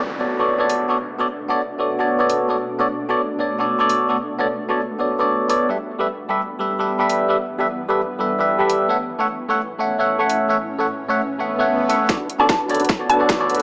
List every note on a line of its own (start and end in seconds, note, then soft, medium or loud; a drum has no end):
0.00 5.65 B2 medium
0.00 5.65 A3 medium
0.00 5.65 D4 medium
0.00 downlifter medium
0.19 0.37 B3 medium
0.19 0.37 F#4 medium
0.19 0.37 A4 medium
0.19 0.37 C#5 medium
0.19 0.38 D5 medium
0.39 0.57 B3 medium
0.39 0.57 F#4 medium
0.39 0.57 A4 medium
0.39 0.57 C#5 medium
0.39 0.58 D5 medium
0.59 0.87 B3 medium
0.59 0.87 F#4 medium
0.59 0.87 A4 medium
0.59 0.87 C#5 medium
0.59 0.88 D5 medium
0.70 open hi-hat medium
0.89 0.96 B3 medium
0.89 0.96 F#4 medium
0.89 0.96 A4 medium
0.89 0.97 C#5 medium
0.89 0.97 D5 medium
1.19 1.26 B3 medium
1.19 1.26 F#4 medium
1.19 1.26 A4 medium
1.19 1.27 C#5 medium
1.19 1.27 D5 loud
1.48 1.60 B3 medium
1.48 1.60 F#4 medium
1.48 1.60 A4 medium
1.48 1.61 C#5 medium
1.48 1.61 D5 loud
1.79 1.97 B3 medium
1.79 1.97 F#4 medium
1.79 1.97 A4 medium
1.79 1.97 C#5 medium
1.79 1.98 D5 medium
1.99 2.17 B3 medium
1.99 2.17 F#4 medium
1.99 2.17 A4 medium
1.99 2.17 C#5 medium
1.99 2.18 D5 medium
2.19 2.47 B3 medium
2.19 2.47 F#4 medium
2.19 2.47 A4 medium
2.19 2.47 C#5 medium
2.19 2.48 D5 medium
2.30 open hi-hat medium
2.49 2.56 B3 medium
2.49 2.56 F#4 medium
2.49 2.56 A4 medium
2.49 2.57 C#5 medium
2.49 2.57 D5 medium
2.79 2.86 B3 medium
2.79 2.86 F#4 medium
2.79 2.86 A4 medium
2.79 2.87 C#5 medium
2.79 2.87 D5 loud
3.08 3.20 B3 medium
3.08 3.20 F#4 medium
3.08 3.20 A4 medium
3.08 3.21 C#5 medium
3.08 3.21 D5 loud
3.39 3.57 B3 medium
3.39 3.57 F#4 medium
3.39 3.57 A4 medium
3.39 3.57 C#5 medium
3.39 3.58 D5 medium
3.59 3.77 B3 medium
3.59 3.77 F#4 medium
3.59 3.77 A4 medium
3.59 3.77 C#5 medium
3.59 3.78 D5 medium
3.79 4.07 B3 medium
3.79 4.07 F#4 medium
3.79 4.07 A4 medium
3.79 4.07 C#5 medium
3.79 4.08 D5 medium
3.90 open hi-hat medium
4.09 4.16 B3 medium
4.09 4.16 F#4 medium
4.09 4.16 A4 medium
4.09 4.17 C#5 medium
4.09 4.17 D5 medium
4.39 4.46 B3 medium
4.39 4.46 F#4 medium
4.39 4.46 A4 medium
4.39 4.47 C#5 medium
4.39 4.47 D5 loud
4.69 4.80 B3 medium
4.69 4.80 F#4 medium
4.69 4.80 A4 medium
4.69 4.81 C#5 medium
4.69 4.81 D5 loud
4.98 5.17 B3 medium
4.98 5.17 F#4 medium
4.98 5.17 A4 medium
4.98 5.17 C#5 medium
4.98 5.18 D5 medium
5.19 5.47 B3 medium
5.19 5.47 F#4 medium
5.19 5.47 A4 medium
5.19 5.47 C#5 medium
5.19 5.48 D5 medium
5.49 5.67 B3 medium
5.49 5.67 F#4 medium
5.49 5.67 A4 medium
5.49 5.67 C#5 medium
5.49 5.68 D5 medium
5.49 open hi-hat medium
5.69 8.86 G2 medium
5.69 12.05 E3 medium
5.69 5.76 G3 medium
5.69 8.86 B3 medium
5.69 5.76 G4 medium
5.69 5.76 A4 medium
5.69 5.77 B4 medium
5.69 5.77 E5 medium
5.99 6.06 G3 medium
5.99 6.06 G4 medium
5.99 6.06 A4 medium
5.99 6.07 B4 medium
5.99 6.07 E5 loud
6.29 6.40 G3 medium
6.29 6.40 G4 medium
6.29 6.40 A4 medium
6.29 6.41 B4 medium
6.29 6.41 E5 loud
6.59 6.77 G3 medium
6.59 6.77 G4 medium
6.59 6.77 A4 medium
6.59 6.77 B4 medium
6.59 6.78 E5 medium
6.79 6.97 G3 medium
6.79 6.97 G4 medium
6.79 6.97 A4 medium
6.79 6.97 B4 medium
6.79 6.98 E5 medium
6.99 7.27 G3 medium
6.99 7.27 G4 medium
6.99 7.27 A4 medium
6.99 7.27 B4 medium
6.99 7.28 E5 medium
7.10 open hi-hat medium
7.28 7.36 G3 medium
7.28 7.36 G4 medium
7.28 7.36 A4 medium
7.28 7.37 B4 medium
7.28 7.37 E5 medium
7.59 7.66 G3 medium
7.59 7.66 G4 medium
7.59 7.66 A4 medium
7.59 7.67 B4 medium
7.59 7.67 E5 loud
7.88 8.00 G3 medium
7.88 8.00 G4 medium
7.88 8.00 A4 medium
7.88 8.01 B4 medium
7.88 8.01 E5 loud
8.19 8.37 G3 medium
8.19 8.37 G4 medium
8.19 8.37 A4 medium
8.19 8.37 B4 medium
8.19 8.38 E5 medium
8.39 8.57 G3 medium
8.39 8.57 G4 medium
8.39 8.57 A4 medium
8.39 8.57 B4 medium
8.39 8.58 E5 medium
8.59 8.87 G3 medium
8.59 8.87 G4 medium
8.59 8.87 A4 medium
8.59 8.87 B4 medium
8.59 8.88 E5 medium
8.70 open hi-hat medium
8.89 12.06 A2 medium
8.89 8.96 A3 medium
8.89 12.06 C#4 medium
8.89 8.96 A4 medium
8.89 8.96 C#5 medium
8.89 8.97 E5 medium
8.89 8.97 F#5 medium
9.19 9.26 A3 medium
9.19 9.26 A4 medium
9.19 9.26 C#5 medium
9.19 9.27 E5 medium
9.19 9.27 F#5 loud
9.48 9.60 A3 medium
9.48 9.60 A4 medium
9.48 9.60 C#5 medium
9.48 9.61 E5 medium
9.48 9.61 F#5 loud
9.79 9.97 A3 medium
9.79 9.97 A4 medium
9.79 9.97 C#5 medium
9.79 9.97 E5 medium
9.79 9.98 F#5 medium
9.99 10.17 A3 medium
9.99 10.17 A4 medium
9.99 10.17 C#5 medium
9.99 10.17 E5 medium
9.99 10.18 F#5 medium
10.19 10.47 A3 medium
10.19 10.47 A4 medium
10.19 10.47 C#5 medium
10.19 10.47 E5 medium
10.19 10.48 F#5 medium
10.30 open hi-hat medium
10.48 10.56 A3 medium
10.48 10.56 A4 medium
10.48 10.56 C#5 medium
10.48 10.57 E5 medium
10.48 10.57 F#5 medium
10.79 10.86 A3 medium
10.79 10.86 A4 medium
10.79 10.86 C#5 medium
10.79 10.87 E5 medium
10.79 10.87 F#5 loud
11.08 11.20 A3 medium
11.08 11.20 A4 medium
11.08 11.20 C#5 medium
11.08 11.21 E5 medium
11.08 11.21 F#5 loud
11.30 swell medium
11.39 11.57 A3 medium
11.39 11.57 A4 medium
11.39 11.57 C#5 medium
11.39 11.57 E5 medium
11.39 11.58 F#5 medium
11.59 11.87 A3 medium
11.59 11.87 A4 medium
11.59 11.87 C#5 medium
11.59 11.87 E5 medium
11.59 11.88 F#5 medium
11.88 12.07 A3 medium
11.88 12.07 A4 medium
11.88 12.07 C#5 medium
11.88 12.07 E5 medium
11.88 12.08 F#5 medium
11.88 open hi-hat medium
12.08 13.62 B2 medium
12.08 13.62 A3 medium
12.08 12.16 B3 medium
12.08 12.28 D4 medium
12.08 13.62 D4 medium
12.08 12.16 F#4 medium
12.08 12.28 F#4 medium
12.08 12.28 A4 medium
12.08 12.16 A4 medium
12.08 12.28 B4 medium
12.08 12.17 C#5 medium
12.08 12.17 D5 medium
12.08 12.28 F#5 medium
12.08 kick medium
12.08 snare soft
12.08 closed hi-hat medium
12.08 riser medium
12.30 closed hi-hat medium
12.39 12.46 B3 medium
12.39 12.77 D4 medium
12.39 12.46 F#4 medium
12.39 12.77 F#4 medium
12.39 12.77 A4 medium
12.39 12.46 A4 medium
12.39 12.77 B4 medium
12.39 12.47 C#5 medium
12.39 12.47 D5 loud
12.39 12.77 A5 medium
12.39 12.48 A5 medium
12.49 12.61 A5 medium
12.49 kick medium
12.49 snare soft
12.49 closed hi-hat medium
12.69 12.80 B3 medium
12.69 12.80 F#4 medium
12.69 12.80 A4 medium
12.69 12.81 C#5 medium
12.69 12.81 D5 loud
12.69 closed hi-hat soft
12.75 closed hi-hat medium
12.80 12.91 D4 loud
12.80 12.91 F#4 medium
12.80 12.91 A4 medium
12.80 12.91 B4 medium
12.80 12.91 A5 loud
12.80 closed hi-hat soft
12.85 closed hi-hat medium
12.89 kick medium
12.89 snare soft
12.89 closed hi-hat medium
12.99 13.17 B3 medium
12.99 13.17 F#4 medium
12.99 13.17 A4 medium
12.99 13.17 C#5 medium
12.99 13.18 D5 medium
13.10 13.37 D4 medium
13.10 13.37 F#4 medium
13.10 13.37 A4 medium
13.10 13.37 B4 medium
13.10 13.37 F#5 loud
13.10 13.21 A5 medium
13.10 closed hi-hat medium
13.19 13.37 B3 medium
13.19 13.37 F#4 medium
13.19 13.37 A4 medium
13.19 13.37 C#5 medium
13.19 13.38 D5 medium
13.29 kick medium
13.29 snare medium
13.29 closed hi-hat medium
13.39 13.62 B3 medium
13.39 13.62 D4 medium
13.39 13.62 F#4 medium
13.39 13.62 A4 medium
13.39 13.62 B4 medium
13.39 13.62 C#5 medium
13.39 13.62 D5 medium
13.39 13.62 A5 loud
13.50 closed hi-hat soft
13.55 closed hi-hat medium